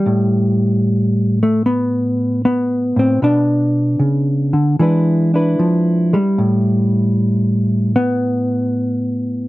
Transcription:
0, 0, Header, 1, 2, 480
1, 0, Start_track
1, 0, Tempo, 789474
1, 36, Time_signature, 4, 2, 24, 8
1, 5766, End_track
2, 0, Start_track
2, 0, Title_t, "Hollow-body jazz guitar"
2, 0, Program_c, 0, 26
2, 0, Note_on_c, 0, 55, 78
2, 36, Note_on_c, 0, 45, 70
2, 853, Note_off_c, 0, 55, 0
2, 868, Note_on_c, 0, 57, 78
2, 1006, Note_off_c, 0, 57, 0
2, 1009, Note_on_c, 0, 59, 94
2, 1481, Note_off_c, 0, 59, 0
2, 1490, Note_on_c, 0, 59, 88
2, 1795, Note_off_c, 0, 45, 0
2, 1802, Note_on_c, 0, 45, 61
2, 1820, Note_on_c, 0, 60, 88
2, 1953, Note_off_c, 0, 45, 0
2, 1954, Note_off_c, 0, 59, 0
2, 1958, Note_on_c, 0, 47, 70
2, 1962, Note_off_c, 0, 60, 0
2, 1962, Note_on_c, 0, 59, 50
2, 1969, Note_on_c, 0, 62, 97
2, 2426, Note_off_c, 0, 47, 0
2, 2429, Note_on_c, 0, 49, 59
2, 2756, Note_on_c, 0, 50, 58
2, 2761, Note_off_c, 0, 49, 0
2, 2910, Note_off_c, 0, 50, 0
2, 2915, Note_on_c, 0, 52, 74
2, 2916, Note_off_c, 0, 62, 0
2, 2918, Note_off_c, 0, 59, 0
2, 2921, Note_on_c, 0, 56, 47
2, 2924, Note_on_c, 0, 62, 47
2, 2929, Note_on_c, 0, 64, 45
2, 2932, Note_on_c, 0, 71, 49
2, 3239, Note_off_c, 0, 62, 0
2, 3246, Note_on_c, 0, 62, 48
2, 3252, Note_off_c, 0, 64, 0
2, 3254, Note_off_c, 0, 71, 0
2, 3254, Note_on_c, 0, 64, 48
2, 3257, Note_on_c, 0, 71, 48
2, 3398, Note_off_c, 0, 52, 0
2, 3400, Note_on_c, 0, 53, 67
2, 3721, Note_off_c, 0, 56, 0
2, 3727, Note_off_c, 0, 53, 0
2, 3728, Note_on_c, 0, 56, 62
2, 3733, Note_on_c, 0, 55, 93
2, 3750, Note_off_c, 0, 56, 0
2, 3858, Note_off_c, 0, 62, 0
2, 3881, Note_on_c, 0, 45, 73
2, 3899, Note_off_c, 0, 71, 0
2, 4836, Note_off_c, 0, 55, 0
2, 4838, Note_on_c, 0, 59, 105
2, 5766, Note_off_c, 0, 45, 0
2, 5766, Note_off_c, 0, 59, 0
2, 5766, Note_off_c, 0, 64, 0
2, 5766, End_track
0, 0, End_of_file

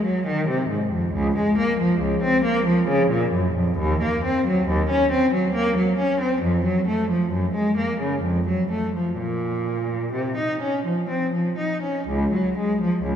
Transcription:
0, 0, Header, 1, 2, 480
1, 0, Start_track
1, 0, Key_signature, -5, "minor"
1, 0, Tempo, 869565
1, 622, Time_signature, 3, 2, 24, 8
1, 1584, Tempo, 902256
1, 2544, Tempo, 878477
1, 3984, Tempo, 927357
1, 4944, Tempo, 966184
1, 6384, Tempo, 936037
1, 6945, End_track
2, 0, Start_track
2, 0, Title_t, "Cello"
2, 0, Program_c, 0, 42
2, 29, Note_on_c, 0, 54, 61
2, 143, Note_off_c, 0, 54, 0
2, 148, Note_on_c, 0, 51, 69
2, 262, Note_off_c, 0, 51, 0
2, 267, Note_on_c, 0, 48, 61
2, 382, Note_off_c, 0, 48, 0
2, 383, Note_on_c, 0, 44, 57
2, 500, Note_off_c, 0, 44, 0
2, 505, Note_on_c, 0, 41, 58
2, 622, Note_off_c, 0, 41, 0
2, 624, Note_on_c, 0, 37, 82
2, 742, Note_off_c, 0, 37, 0
2, 755, Note_on_c, 0, 56, 63
2, 868, Note_off_c, 0, 56, 0
2, 873, Note_on_c, 0, 58, 67
2, 987, Note_off_c, 0, 58, 0
2, 996, Note_on_c, 0, 53, 68
2, 1108, Note_off_c, 0, 53, 0
2, 1108, Note_on_c, 0, 37, 65
2, 1225, Note_off_c, 0, 37, 0
2, 1229, Note_on_c, 0, 60, 75
2, 1345, Note_off_c, 0, 60, 0
2, 1349, Note_on_c, 0, 58, 74
2, 1464, Note_off_c, 0, 58, 0
2, 1467, Note_on_c, 0, 53, 73
2, 1583, Note_off_c, 0, 53, 0
2, 1589, Note_on_c, 0, 49, 75
2, 1701, Note_off_c, 0, 49, 0
2, 1708, Note_on_c, 0, 46, 63
2, 1821, Note_off_c, 0, 46, 0
2, 1825, Note_on_c, 0, 42, 64
2, 1942, Note_off_c, 0, 42, 0
2, 1946, Note_on_c, 0, 41, 62
2, 2065, Note_off_c, 0, 41, 0
2, 2069, Note_on_c, 0, 39, 84
2, 2188, Note_off_c, 0, 39, 0
2, 2197, Note_on_c, 0, 58, 61
2, 2311, Note_off_c, 0, 58, 0
2, 2318, Note_on_c, 0, 60, 66
2, 2429, Note_off_c, 0, 60, 0
2, 2438, Note_on_c, 0, 54, 66
2, 2547, Note_on_c, 0, 39, 77
2, 2548, Note_off_c, 0, 54, 0
2, 2662, Note_off_c, 0, 39, 0
2, 2665, Note_on_c, 0, 61, 77
2, 2780, Note_off_c, 0, 61, 0
2, 2785, Note_on_c, 0, 60, 78
2, 2899, Note_off_c, 0, 60, 0
2, 2909, Note_on_c, 0, 54, 64
2, 3020, Note_off_c, 0, 54, 0
2, 3021, Note_on_c, 0, 58, 85
2, 3135, Note_off_c, 0, 58, 0
2, 3141, Note_on_c, 0, 54, 63
2, 3256, Note_off_c, 0, 54, 0
2, 3260, Note_on_c, 0, 61, 68
2, 3376, Note_off_c, 0, 61, 0
2, 3381, Note_on_c, 0, 60, 67
2, 3497, Note_off_c, 0, 60, 0
2, 3497, Note_on_c, 0, 41, 78
2, 3616, Note_off_c, 0, 41, 0
2, 3627, Note_on_c, 0, 54, 59
2, 3742, Note_off_c, 0, 54, 0
2, 3748, Note_on_c, 0, 57, 63
2, 3864, Note_off_c, 0, 57, 0
2, 3872, Note_on_c, 0, 53, 55
2, 3987, Note_on_c, 0, 42, 68
2, 3988, Note_off_c, 0, 53, 0
2, 4101, Note_off_c, 0, 42, 0
2, 4107, Note_on_c, 0, 56, 60
2, 4220, Note_off_c, 0, 56, 0
2, 4224, Note_on_c, 0, 58, 59
2, 4338, Note_off_c, 0, 58, 0
2, 4344, Note_on_c, 0, 49, 54
2, 4455, Note_on_c, 0, 41, 66
2, 4459, Note_off_c, 0, 49, 0
2, 4575, Note_off_c, 0, 41, 0
2, 4589, Note_on_c, 0, 54, 53
2, 4703, Note_off_c, 0, 54, 0
2, 4709, Note_on_c, 0, 57, 51
2, 4825, Note_off_c, 0, 57, 0
2, 4834, Note_on_c, 0, 53, 45
2, 4949, Note_off_c, 0, 53, 0
2, 4951, Note_on_c, 0, 46, 59
2, 5413, Note_off_c, 0, 46, 0
2, 5421, Note_on_c, 0, 48, 51
2, 5537, Note_off_c, 0, 48, 0
2, 5542, Note_on_c, 0, 63, 49
2, 5657, Note_off_c, 0, 63, 0
2, 5663, Note_on_c, 0, 61, 50
2, 5777, Note_off_c, 0, 61, 0
2, 5781, Note_on_c, 0, 53, 43
2, 5895, Note_off_c, 0, 53, 0
2, 5902, Note_on_c, 0, 60, 55
2, 6016, Note_off_c, 0, 60, 0
2, 6022, Note_on_c, 0, 53, 41
2, 6140, Note_off_c, 0, 53, 0
2, 6144, Note_on_c, 0, 63, 45
2, 6263, Note_off_c, 0, 63, 0
2, 6266, Note_on_c, 0, 61, 44
2, 6386, Note_off_c, 0, 61, 0
2, 6392, Note_on_c, 0, 37, 72
2, 6512, Note_off_c, 0, 37, 0
2, 6522, Note_on_c, 0, 54, 51
2, 6636, Note_off_c, 0, 54, 0
2, 6646, Note_on_c, 0, 56, 58
2, 6757, Note_off_c, 0, 56, 0
2, 6768, Note_on_c, 0, 53, 58
2, 6875, Note_off_c, 0, 53, 0
2, 6879, Note_on_c, 0, 37, 61
2, 6945, Note_off_c, 0, 37, 0
2, 6945, End_track
0, 0, End_of_file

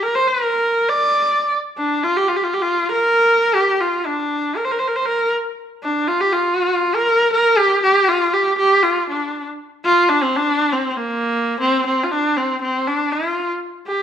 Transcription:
0, 0, Header, 1, 2, 480
1, 0, Start_track
1, 0, Tempo, 503778
1, 1453, Time_signature, 4, 2, 24, 8
1, 13363, End_track
2, 0, Start_track
2, 0, Title_t, "Horsehead fiddle"
2, 0, Program_c, 0, 110
2, 26, Note_on_c, 0, 70, 83
2, 144, Note_on_c, 0, 72, 84
2, 158, Note_off_c, 0, 70, 0
2, 263, Note_on_c, 0, 70, 85
2, 277, Note_off_c, 0, 72, 0
2, 844, Note_on_c, 0, 74, 98
2, 858, Note_off_c, 0, 70, 0
2, 1449, Note_off_c, 0, 74, 0
2, 1692, Note_on_c, 0, 62, 81
2, 1939, Note_on_c, 0, 65, 89
2, 1953, Note_off_c, 0, 62, 0
2, 2060, Note_on_c, 0, 67, 89
2, 2074, Note_off_c, 0, 65, 0
2, 2173, Note_on_c, 0, 65, 77
2, 2188, Note_off_c, 0, 67, 0
2, 2252, Note_on_c, 0, 67, 74
2, 2266, Note_off_c, 0, 65, 0
2, 2324, Note_on_c, 0, 65, 75
2, 2338, Note_off_c, 0, 67, 0
2, 2413, Note_on_c, 0, 67, 77
2, 2427, Note_off_c, 0, 65, 0
2, 2495, Note_on_c, 0, 65, 90
2, 2509, Note_off_c, 0, 67, 0
2, 2774, Note_off_c, 0, 65, 0
2, 2780, Note_on_c, 0, 70, 103
2, 3377, Note_on_c, 0, 67, 93
2, 3391, Note_off_c, 0, 70, 0
2, 3622, Note_on_c, 0, 65, 81
2, 3637, Note_off_c, 0, 67, 0
2, 3868, Note_on_c, 0, 62, 82
2, 3882, Note_off_c, 0, 65, 0
2, 4348, Note_on_c, 0, 70, 65
2, 4362, Note_off_c, 0, 62, 0
2, 4423, Note_on_c, 0, 72, 70
2, 4437, Note_off_c, 0, 70, 0
2, 4492, Note_on_c, 0, 70, 68
2, 4506, Note_off_c, 0, 72, 0
2, 4563, Note_on_c, 0, 72, 64
2, 4577, Note_off_c, 0, 70, 0
2, 4642, Note_on_c, 0, 70, 65
2, 4656, Note_off_c, 0, 72, 0
2, 4723, Note_on_c, 0, 72, 68
2, 4737, Note_off_c, 0, 70, 0
2, 4813, Note_on_c, 0, 70, 84
2, 4828, Note_off_c, 0, 72, 0
2, 5067, Note_off_c, 0, 70, 0
2, 5559, Note_on_c, 0, 62, 86
2, 5787, Note_on_c, 0, 65, 92
2, 5802, Note_off_c, 0, 62, 0
2, 5912, Note_on_c, 0, 67, 95
2, 5926, Note_off_c, 0, 65, 0
2, 6027, Note_on_c, 0, 65, 92
2, 6042, Note_off_c, 0, 67, 0
2, 6619, Note_on_c, 0, 70, 97
2, 6633, Note_off_c, 0, 65, 0
2, 6976, Note_off_c, 0, 70, 0
2, 6982, Note_on_c, 0, 70, 94
2, 7217, Note_on_c, 0, 67, 103
2, 7232, Note_off_c, 0, 70, 0
2, 7453, Note_off_c, 0, 67, 0
2, 7459, Note_on_c, 0, 67, 98
2, 7698, Note_on_c, 0, 65, 94
2, 7713, Note_off_c, 0, 67, 0
2, 7941, Note_on_c, 0, 67, 87
2, 7955, Note_off_c, 0, 65, 0
2, 8172, Note_off_c, 0, 67, 0
2, 8178, Note_on_c, 0, 67, 92
2, 8412, Note_on_c, 0, 65, 82
2, 8426, Note_off_c, 0, 67, 0
2, 8657, Note_off_c, 0, 65, 0
2, 8664, Note_on_c, 0, 62, 69
2, 8998, Note_off_c, 0, 62, 0
2, 9387, Note_on_c, 0, 65, 103
2, 9612, Note_on_c, 0, 62, 99
2, 9626, Note_off_c, 0, 65, 0
2, 9738, Note_on_c, 0, 60, 89
2, 9752, Note_off_c, 0, 62, 0
2, 9871, Note_on_c, 0, 62, 98
2, 9885, Note_off_c, 0, 60, 0
2, 10217, Note_on_c, 0, 60, 85
2, 10231, Note_off_c, 0, 62, 0
2, 10387, Note_off_c, 0, 60, 0
2, 10387, Note_on_c, 0, 60, 65
2, 10448, Note_on_c, 0, 58, 89
2, 10462, Note_off_c, 0, 60, 0
2, 11047, Note_off_c, 0, 58, 0
2, 11053, Note_on_c, 0, 60, 97
2, 11279, Note_off_c, 0, 60, 0
2, 11301, Note_on_c, 0, 60, 84
2, 11468, Note_on_c, 0, 65, 59
2, 11482, Note_off_c, 0, 60, 0
2, 11539, Note_on_c, 0, 62, 88
2, 11553, Note_off_c, 0, 65, 0
2, 11782, Note_on_c, 0, 60, 79
2, 11796, Note_off_c, 0, 62, 0
2, 12014, Note_off_c, 0, 60, 0
2, 12020, Note_on_c, 0, 60, 82
2, 12263, Note_on_c, 0, 62, 86
2, 12277, Note_off_c, 0, 60, 0
2, 12502, Note_on_c, 0, 65, 77
2, 12516, Note_off_c, 0, 62, 0
2, 12857, Note_off_c, 0, 65, 0
2, 13216, Note_on_c, 0, 67, 76
2, 13363, Note_off_c, 0, 67, 0
2, 13363, End_track
0, 0, End_of_file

